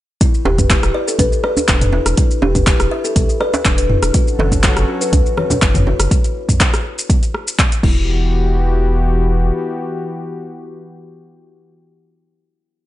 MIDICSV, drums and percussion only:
0, 0, Header, 1, 3, 480
1, 0, Start_track
1, 0, Tempo, 491803
1, 206, Time_signature, 4, 2, 24, 8
1, 12557, End_track
2, 0, Start_track
2, 0, Title_t, "Djembe"
2, 442, Note_on_c, 9, 63, 93
2, 444, Note_on_c, 9, 62, 113
2, 540, Note_off_c, 9, 63, 0
2, 541, Note_off_c, 9, 62, 0
2, 568, Note_on_c, 9, 63, 75
2, 666, Note_off_c, 9, 63, 0
2, 1159, Note_on_c, 9, 63, 85
2, 1257, Note_off_c, 9, 63, 0
2, 1530, Note_on_c, 9, 63, 82
2, 1628, Note_off_c, 9, 63, 0
2, 1879, Note_on_c, 9, 62, 83
2, 1976, Note_off_c, 9, 62, 0
2, 2362, Note_on_c, 9, 62, 101
2, 2369, Note_on_c, 9, 63, 103
2, 2459, Note_off_c, 9, 62, 0
2, 2466, Note_off_c, 9, 63, 0
2, 2492, Note_on_c, 9, 63, 78
2, 2589, Note_off_c, 9, 63, 0
2, 3452, Note_on_c, 9, 62, 111
2, 3550, Note_off_c, 9, 62, 0
2, 4286, Note_on_c, 9, 63, 104
2, 4292, Note_on_c, 9, 62, 110
2, 4384, Note_off_c, 9, 63, 0
2, 4389, Note_off_c, 9, 62, 0
2, 4410, Note_on_c, 9, 63, 83
2, 4508, Note_off_c, 9, 63, 0
2, 5002, Note_on_c, 9, 63, 97
2, 5100, Note_off_c, 9, 63, 0
2, 5378, Note_on_c, 9, 63, 83
2, 5475, Note_off_c, 9, 63, 0
2, 5727, Note_on_c, 9, 62, 88
2, 5825, Note_off_c, 9, 62, 0
2, 12557, End_track
3, 0, Start_track
3, 0, Title_t, "Drums"
3, 204, Note_on_c, 9, 36, 121
3, 205, Note_on_c, 9, 42, 70
3, 209, Note_on_c, 9, 82, 67
3, 302, Note_off_c, 9, 36, 0
3, 302, Note_off_c, 9, 42, 0
3, 307, Note_off_c, 9, 82, 0
3, 335, Note_on_c, 9, 82, 40
3, 433, Note_off_c, 9, 82, 0
3, 570, Note_on_c, 9, 36, 61
3, 571, Note_on_c, 9, 42, 33
3, 571, Note_on_c, 9, 45, 76
3, 575, Note_on_c, 9, 82, 82
3, 668, Note_off_c, 9, 36, 0
3, 669, Note_off_c, 9, 42, 0
3, 669, Note_off_c, 9, 45, 0
3, 673, Note_off_c, 9, 82, 0
3, 684, Note_on_c, 9, 36, 125
3, 686, Note_on_c, 9, 39, 100
3, 686, Note_on_c, 9, 42, 73
3, 690, Note_on_c, 9, 82, 68
3, 782, Note_off_c, 9, 36, 0
3, 783, Note_off_c, 9, 39, 0
3, 783, Note_off_c, 9, 42, 0
3, 788, Note_off_c, 9, 82, 0
3, 812, Note_on_c, 9, 37, 95
3, 812, Note_on_c, 9, 42, 32
3, 816, Note_on_c, 9, 82, 39
3, 910, Note_off_c, 9, 37, 0
3, 910, Note_off_c, 9, 42, 0
3, 914, Note_off_c, 9, 82, 0
3, 1055, Note_on_c, 9, 82, 81
3, 1152, Note_off_c, 9, 82, 0
3, 1163, Note_on_c, 9, 42, 69
3, 1164, Note_on_c, 9, 36, 121
3, 1167, Note_on_c, 9, 82, 67
3, 1261, Note_off_c, 9, 42, 0
3, 1262, Note_off_c, 9, 36, 0
3, 1265, Note_off_c, 9, 82, 0
3, 1293, Note_on_c, 9, 82, 40
3, 1391, Note_off_c, 9, 82, 0
3, 1402, Note_on_c, 9, 37, 81
3, 1500, Note_off_c, 9, 37, 0
3, 1534, Note_on_c, 9, 82, 80
3, 1632, Note_off_c, 9, 82, 0
3, 1643, Note_on_c, 9, 39, 100
3, 1643, Note_on_c, 9, 42, 72
3, 1644, Note_on_c, 9, 36, 118
3, 1648, Note_on_c, 9, 82, 67
3, 1741, Note_off_c, 9, 36, 0
3, 1741, Note_off_c, 9, 39, 0
3, 1741, Note_off_c, 9, 42, 0
3, 1745, Note_off_c, 9, 82, 0
3, 1771, Note_on_c, 9, 42, 45
3, 1771, Note_on_c, 9, 45, 89
3, 1775, Note_on_c, 9, 82, 39
3, 1869, Note_off_c, 9, 42, 0
3, 1869, Note_off_c, 9, 45, 0
3, 1873, Note_off_c, 9, 82, 0
3, 2010, Note_on_c, 9, 37, 99
3, 2010, Note_on_c, 9, 42, 47
3, 2014, Note_on_c, 9, 82, 80
3, 2107, Note_off_c, 9, 37, 0
3, 2107, Note_off_c, 9, 42, 0
3, 2111, Note_off_c, 9, 82, 0
3, 2123, Note_on_c, 9, 42, 68
3, 2124, Note_on_c, 9, 36, 126
3, 2127, Note_on_c, 9, 82, 68
3, 2220, Note_off_c, 9, 42, 0
3, 2221, Note_off_c, 9, 36, 0
3, 2225, Note_off_c, 9, 82, 0
3, 2254, Note_on_c, 9, 82, 42
3, 2352, Note_off_c, 9, 82, 0
3, 2490, Note_on_c, 9, 36, 66
3, 2490, Note_on_c, 9, 42, 33
3, 2490, Note_on_c, 9, 45, 79
3, 2494, Note_on_c, 9, 82, 81
3, 2587, Note_off_c, 9, 36, 0
3, 2587, Note_off_c, 9, 42, 0
3, 2587, Note_off_c, 9, 45, 0
3, 2592, Note_off_c, 9, 82, 0
3, 2603, Note_on_c, 9, 36, 126
3, 2604, Note_on_c, 9, 39, 98
3, 2604, Note_on_c, 9, 42, 70
3, 2608, Note_on_c, 9, 82, 71
3, 2701, Note_off_c, 9, 36, 0
3, 2702, Note_off_c, 9, 39, 0
3, 2702, Note_off_c, 9, 42, 0
3, 2706, Note_off_c, 9, 82, 0
3, 2731, Note_on_c, 9, 37, 99
3, 2731, Note_on_c, 9, 42, 31
3, 2735, Note_on_c, 9, 82, 40
3, 2829, Note_off_c, 9, 37, 0
3, 2829, Note_off_c, 9, 42, 0
3, 2833, Note_off_c, 9, 82, 0
3, 2974, Note_on_c, 9, 82, 82
3, 3072, Note_off_c, 9, 82, 0
3, 3084, Note_on_c, 9, 36, 127
3, 3084, Note_on_c, 9, 42, 65
3, 3088, Note_on_c, 9, 82, 68
3, 3181, Note_off_c, 9, 36, 0
3, 3181, Note_off_c, 9, 42, 0
3, 3186, Note_off_c, 9, 82, 0
3, 3215, Note_on_c, 9, 82, 41
3, 3313, Note_off_c, 9, 82, 0
3, 3324, Note_on_c, 9, 37, 79
3, 3421, Note_off_c, 9, 37, 0
3, 3454, Note_on_c, 9, 82, 84
3, 3552, Note_off_c, 9, 82, 0
3, 3564, Note_on_c, 9, 36, 126
3, 3564, Note_on_c, 9, 39, 96
3, 3564, Note_on_c, 9, 42, 70
3, 3569, Note_on_c, 9, 82, 68
3, 3661, Note_off_c, 9, 36, 0
3, 3662, Note_off_c, 9, 39, 0
3, 3662, Note_off_c, 9, 42, 0
3, 3666, Note_off_c, 9, 82, 0
3, 3689, Note_on_c, 9, 42, 46
3, 3694, Note_on_c, 9, 82, 41
3, 3787, Note_off_c, 9, 42, 0
3, 3791, Note_off_c, 9, 82, 0
3, 3802, Note_on_c, 9, 45, 84
3, 3900, Note_off_c, 9, 45, 0
3, 3929, Note_on_c, 9, 37, 99
3, 3929, Note_on_c, 9, 42, 46
3, 3933, Note_on_c, 9, 82, 85
3, 4027, Note_off_c, 9, 37, 0
3, 4027, Note_off_c, 9, 42, 0
3, 4031, Note_off_c, 9, 82, 0
3, 4042, Note_on_c, 9, 42, 67
3, 4044, Note_on_c, 9, 36, 127
3, 4046, Note_on_c, 9, 82, 68
3, 4139, Note_off_c, 9, 42, 0
3, 4142, Note_off_c, 9, 36, 0
3, 4144, Note_off_c, 9, 82, 0
3, 4173, Note_on_c, 9, 82, 42
3, 4271, Note_off_c, 9, 82, 0
3, 4289, Note_on_c, 9, 63, 70
3, 4386, Note_off_c, 9, 63, 0
3, 4410, Note_on_c, 9, 36, 65
3, 4411, Note_on_c, 9, 42, 31
3, 4411, Note_on_c, 9, 45, 77
3, 4415, Note_on_c, 9, 82, 88
3, 4508, Note_off_c, 9, 36, 0
3, 4508, Note_off_c, 9, 42, 0
3, 4508, Note_off_c, 9, 45, 0
3, 4513, Note_off_c, 9, 82, 0
3, 4524, Note_on_c, 9, 36, 127
3, 4524, Note_on_c, 9, 39, 102
3, 4524, Note_on_c, 9, 42, 68
3, 4528, Note_on_c, 9, 82, 71
3, 4621, Note_off_c, 9, 39, 0
3, 4621, Note_off_c, 9, 42, 0
3, 4622, Note_off_c, 9, 36, 0
3, 4626, Note_off_c, 9, 82, 0
3, 4652, Note_on_c, 9, 37, 98
3, 4652, Note_on_c, 9, 42, 29
3, 4656, Note_on_c, 9, 82, 42
3, 4749, Note_off_c, 9, 37, 0
3, 4749, Note_off_c, 9, 42, 0
3, 4754, Note_off_c, 9, 82, 0
3, 4895, Note_on_c, 9, 82, 86
3, 4993, Note_off_c, 9, 82, 0
3, 5005, Note_on_c, 9, 36, 127
3, 5005, Note_on_c, 9, 42, 68
3, 5010, Note_on_c, 9, 82, 70
3, 5102, Note_off_c, 9, 36, 0
3, 5103, Note_off_c, 9, 42, 0
3, 5107, Note_off_c, 9, 82, 0
3, 5135, Note_on_c, 9, 82, 43
3, 5233, Note_off_c, 9, 82, 0
3, 5246, Note_on_c, 9, 37, 82
3, 5248, Note_on_c, 9, 63, 76
3, 5344, Note_off_c, 9, 37, 0
3, 5346, Note_off_c, 9, 63, 0
3, 5370, Note_on_c, 9, 64, 108
3, 5376, Note_on_c, 9, 82, 86
3, 5467, Note_off_c, 9, 64, 0
3, 5474, Note_off_c, 9, 82, 0
3, 5485, Note_on_c, 9, 36, 127
3, 5485, Note_on_c, 9, 39, 100
3, 5485, Note_on_c, 9, 42, 68
3, 5490, Note_on_c, 9, 82, 71
3, 5582, Note_off_c, 9, 36, 0
3, 5583, Note_off_c, 9, 39, 0
3, 5583, Note_off_c, 9, 42, 0
3, 5587, Note_off_c, 9, 82, 0
3, 5606, Note_on_c, 9, 64, 93
3, 5607, Note_on_c, 9, 63, 114
3, 5612, Note_on_c, 9, 42, 45
3, 5612, Note_on_c, 9, 45, 89
3, 5617, Note_on_c, 9, 82, 42
3, 5703, Note_off_c, 9, 64, 0
3, 5705, Note_off_c, 9, 63, 0
3, 5710, Note_off_c, 9, 42, 0
3, 5710, Note_off_c, 9, 45, 0
3, 5714, Note_off_c, 9, 82, 0
3, 5852, Note_on_c, 9, 37, 97
3, 5852, Note_on_c, 9, 42, 46
3, 5856, Note_on_c, 9, 82, 84
3, 5950, Note_off_c, 9, 37, 0
3, 5950, Note_off_c, 9, 42, 0
3, 5954, Note_off_c, 9, 82, 0
3, 5965, Note_on_c, 9, 36, 122
3, 5967, Note_on_c, 9, 42, 65
3, 5971, Note_on_c, 9, 82, 71
3, 6063, Note_off_c, 9, 36, 0
3, 6065, Note_off_c, 9, 42, 0
3, 6069, Note_off_c, 9, 82, 0
3, 6094, Note_on_c, 9, 42, 31
3, 6098, Note_on_c, 9, 82, 41
3, 6192, Note_off_c, 9, 42, 0
3, 6196, Note_off_c, 9, 82, 0
3, 6331, Note_on_c, 9, 36, 66
3, 6334, Note_on_c, 9, 42, 30
3, 6334, Note_on_c, 9, 45, 82
3, 6339, Note_on_c, 9, 82, 84
3, 6429, Note_off_c, 9, 36, 0
3, 6432, Note_off_c, 9, 42, 0
3, 6432, Note_off_c, 9, 45, 0
3, 6436, Note_off_c, 9, 82, 0
3, 6445, Note_on_c, 9, 36, 127
3, 6447, Note_on_c, 9, 39, 99
3, 6447, Note_on_c, 9, 42, 67
3, 6451, Note_on_c, 9, 82, 71
3, 6543, Note_off_c, 9, 36, 0
3, 6545, Note_off_c, 9, 39, 0
3, 6545, Note_off_c, 9, 42, 0
3, 6549, Note_off_c, 9, 82, 0
3, 6575, Note_on_c, 9, 37, 93
3, 6575, Note_on_c, 9, 42, 29
3, 6579, Note_on_c, 9, 82, 42
3, 6672, Note_off_c, 9, 37, 0
3, 6672, Note_off_c, 9, 42, 0
3, 6676, Note_off_c, 9, 82, 0
3, 6819, Note_on_c, 9, 82, 84
3, 6917, Note_off_c, 9, 82, 0
3, 6925, Note_on_c, 9, 36, 126
3, 6928, Note_on_c, 9, 42, 65
3, 6932, Note_on_c, 9, 82, 67
3, 7023, Note_off_c, 9, 36, 0
3, 7025, Note_off_c, 9, 42, 0
3, 7030, Note_off_c, 9, 82, 0
3, 7054, Note_on_c, 9, 42, 31
3, 7058, Note_on_c, 9, 82, 40
3, 7152, Note_off_c, 9, 42, 0
3, 7156, Note_off_c, 9, 82, 0
3, 7168, Note_on_c, 9, 37, 76
3, 7266, Note_off_c, 9, 37, 0
3, 7299, Note_on_c, 9, 82, 86
3, 7397, Note_off_c, 9, 82, 0
3, 7405, Note_on_c, 9, 36, 127
3, 7410, Note_on_c, 9, 39, 100
3, 7410, Note_on_c, 9, 42, 65
3, 7414, Note_on_c, 9, 82, 71
3, 7503, Note_off_c, 9, 36, 0
3, 7507, Note_off_c, 9, 39, 0
3, 7507, Note_off_c, 9, 42, 0
3, 7512, Note_off_c, 9, 82, 0
3, 7536, Note_on_c, 9, 42, 44
3, 7541, Note_on_c, 9, 82, 42
3, 7634, Note_off_c, 9, 42, 0
3, 7638, Note_off_c, 9, 82, 0
3, 7645, Note_on_c, 9, 36, 118
3, 7648, Note_on_c, 9, 49, 91
3, 7743, Note_off_c, 9, 36, 0
3, 7746, Note_off_c, 9, 49, 0
3, 12557, End_track
0, 0, End_of_file